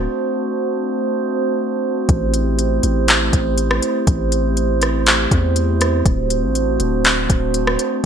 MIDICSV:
0, 0, Header, 1, 4, 480
1, 0, Start_track
1, 0, Tempo, 495868
1, 103, Time_signature, 4, 2, 24, 8
1, 7796, End_track
2, 0, Start_track
2, 0, Title_t, "Glass harmonica"
2, 0, Program_c, 0, 92
2, 0, Note_on_c, 0, 57, 77
2, 0, Note_on_c, 0, 60, 67
2, 0, Note_on_c, 0, 62, 69
2, 0, Note_on_c, 0, 66, 67
2, 0, Note_on_c, 0, 72, 84
2, 1986, Note_off_c, 0, 62, 0
2, 1986, Note_off_c, 0, 66, 0
2, 2023, Note_on_c, 0, 64, 69
2, 2023, Note_on_c, 0, 67, 70
2, 5824, Note_off_c, 0, 64, 0
2, 5824, Note_off_c, 0, 67, 0
2, 5825, Note_off_c, 0, 60, 0
2, 5825, Note_off_c, 0, 72, 0
2, 5861, Note_on_c, 0, 62, 70
2, 5862, Note_on_c, 0, 60, 67
2, 5862, Note_on_c, 0, 66, 70
2, 5862, Note_on_c, 0, 72, 80
2, 7796, Note_off_c, 0, 57, 0
2, 7796, Note_off_c, 0, 60, 0
2, 7796, Note_off_c, 0, 62, 0
2, 7796, Note_off_c, 0, 66, 0
2, 7796, Note_off_c, 0, 72, 0
2, 7796, End_track
3, 0, Start_track
3, 0, Title_t, "808-style bass"
3, 0, Program_c, 1, 38
3, 2022, Note_on_c, 1, 33, 116
3, 2713, Note_off_c, 1, 33, 0
3, 2744, Note_on_c, 1, 33, 105
3, 3204, Note_off_c, 1, 33, 0
3, 3224, Note_on_c, 1, 33, 106
3, 3684, Note_off_c, 1, 33, 0
3, 3942, Note_on_c, 1, 33, 121
3, 5104, Note_off_c, 1, 33, 0
3, 5144, Note_on_c, 1, 40, 103
3, 5835, Note_off_c, 1, 40, 0
3, 5862, Note_on_c, 1, 26, 112
3, 6222, Note_on_c, 1, 33, 100
3, 6237, Note_off_c, 1, 26, 0
3, 6564, Note_off_c, 1, 33, 0
3, 6582, Note_on_c, 1, 26, 100
3, 7043, Note_off_c, 1, 26, 0
3, 7063, Note_on_c, 1, 26, 105
3, 7524, Note_off_c, 1, 26, 0
3, 7796, End_track
4, 0, Start_track
4, 0, Title_t, "Drums"
4, 2021, Note_on_c, 9, 42, 70
4, 2022, Note_on_c, 9, 36, 121
4, 2118, Note_off_c, 9, 42, 0
4, 2119, Note_off_c, 9, 36, 0
4, 2262, Note_on_c, 9, 42, 78
4, 2358, Note_off_c, 9, 42, 0
4, 2504, Note_on_c, 9, 42, 75
4, 2600, Note_off_c, 9, 42, 0
4, 2742, Note_on_c, 9, 42, 81
4, 2838, Note_off_c, 9, 42, 0
4, 2982, Note_on_c, 9, 42, 82
4, 2992, Note_on_c, 9, 39, 109
4, 3079, Note_off_c, 9, 42, 0
4, 3089, Note_off_c, 9, 39, 0
4, 3225, Note_on_c, 9, 36, 100
4, 3225, Note_on_c, 9, 42, 71
4, 3321, Note_off_c, 9, 36, 0
4, 3322, Note_off_c, 9, 42, 0
4, 3462, Note_on_c, 9, 42, 80
4, 3558, Note_off_c, 9, 42, 0
4, 3589, Note_on_c, 9, 37, 102
4, 3685, Note_off_c, 9, 37, 0
4, 3702, Note_on_c, 9, 42, 86
4, 3799, Note_off_c, 9, 42, 0
4, 3941, Note_on_c, 9, 42, 74
4, 3942, Note_on_c, 9, 36, 125
4, 4038, Note_off_c, 9, 42, 0
4, 4039, Note_off_c, 9, 36, 0
4, 4182, Note_on_c, 9, 42, 78
4, 4279, Note_off_c, 9, 42, 0
4, 4423, Note_on_c, 9, 42, 72
4, 4520, Note_off_c, 9, 42, 0
4, 4661, Note_on_c, 9, 42, 81
4, 4672, Note_on_c, 9, 37, 89
4, 4758, Note_off_c, 9, 42, 0
4, 4769, Note_off_c, 9, 37, 0
4, 4902, Note_on_c, 9, 42, 80
4, 4912, Note_on_c, 9, 39, 109
4, 4999, Note_off_c, 9, 42, 0
4, 5009, Note_off_c, 9, 39, 0
4, 5144, Note_on_c, 9, 36, 93
4, 5145, Note_on_c, 9, 42, 71
4, 5241, Note_off_c, 9, 36, 0
4, 5241, Note_off_c, 9, 42, 0
4, 5382, Note_on_c, 9, 42, 81
4, 5478, Note_off_c, 9, 42, 0
4, 5622, Note_on_c, 9, 42, 90
4, 5629, Note_on_c, 9, 37, 91
4, 5719, Note_off_c, 9, 42, 0
4, 5726, Note_off_c, 9, 37, 0
4, 5862, Note_on_c, 9, 36, 120
4, 5862, Note_on_c, 9, 42, 72
4, 5959, Note_off_c, 9, 36, 0
4, 5959, Note_off_c, 9, 42, 0
4, 6102, Note_on_c, 9, 42, 81
4, 6198, Note_off_c, 9, 42, 0
4, 6343, Note_on_c, 9, 42, 71
4, 6439, Note_off_c, 9, 42, 0
4, 6580, Note_on_c, 9, 42, 80
4, 6677, Note_off_c, 9, 42, 0
4, 6821, Note_on_c, 9, 42, 78
4, 6831, Note_on_c, 9, 39, 102
4, 6917, Note_off_c, 9, 42, 0
4, 6927, Note_off_c, 9, 39, 0
4, 7064, Note_on_c, 9, 36, 100
4, 7064, Note_on_c, 9, 42, 75
4, 7160, Note_off_c, 9, 42, 0
4, 7161, Note_off_c, 9, 36, 0
4, 7300, Note_on_c, 9, 42, 87
4, 7396, Note_off_c, 9, 42, 0
4, 7428, Note_on_c, 9, 37, 100
4, 7525, Note_off_c, 9, 37, 0
4, 7542, Note_on_c, 9, 42, 85
4, 7638, Note_off_c, 9, 42, 0
4, 7796, End_track
0, 0, End_of_file